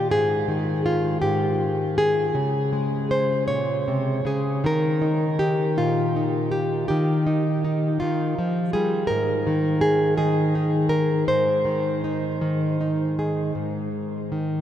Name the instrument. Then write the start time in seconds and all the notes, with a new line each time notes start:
nylon-string guitar
Already playing: A#2 D#3 G4
0.11 G#2 G#4
0.48 D#3
0.86 F4
1.22 G#2 G4
1.98 G#4
2.35 C#3
2.73 G#3
3.11 C5
3.48 A#2 C#5
3.88 C3
4.25 C#3 G#4
4.64 D#3 A#4
5.02 D#4
5.39 G4
5.77 A#2 F4
6.16 D#4
6.52 G4
6.88 D#3 G4
7.26 D#4
7.64 D#4
8.00 D#3 F4
8.39 F3
8.73 G3 G#4
9.07 G#2 A#4
9.47 D#3
9.81 G#4
10.18 D#3 G#4
10.55 D#4
10.89 A#4
11.28 G#2 C5
11.65 D#3
12.04 D#4
12.41 D#3
12.81 D#4
13.19 G#4
13.55 G#2
14.32 D#3